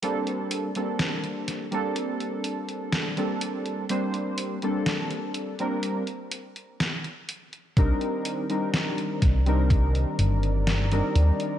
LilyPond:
<<
  \new Staff \with { instrumentName = "Ambient pad" } { \time 4/4 \key bes \major \tempo 4 = 62 r1 | r1 | <ees d'' bes''>1 | }
  \new Staff \with { instrumentName = "Synth keys" } { \time 4/4 \key bes \major <g bes c' d' a'>8. <g bes c' d' a'>4 <g bes c' d' a'>4. <g bes c' d' a'>8. | <g bes c' d' c''>8. <g bes c' d' a'>4 <g bes c' d' bes'>8 r4. r16 | <g c' d' ees' bes'>8. <g c' d' ees' bes'>4 <g c' d' ees' bes'>4. <g c' d' ees' bes'>8. | }
  \new Staff \with { instrumentName = "Analog synth bass" } { \clef bass \time 4/4 \key bes \major r1 | r1 | c,8 r4 c,4 g,,4 ees,8 | }
  \new DrumStaff \with { instrumentName = "Drums" } \drummode { \time 4/4 hh16 hh16 hh16 hh16 <hh sn>16 hh16 <hh sn>16 hh16 hh16 hh16 hh16 hh16 <hh sn>16 hh16 hh16 hh16 | hh16 hh16 hh16 hh16 <hh sn>16 hh16 hh16 hh16 hh16 hh16 hh16 hh16 <hh sn>16 hh16 hh16 hh16 | <hh bd>16 hh16 hh16 hh16 <hh sn>16 hh16 <hh bd sn>16 hh16 <hh bd>16 hh16 hh16 hh16 <hh sn>16 hh16 hh16 hh16 | }
>>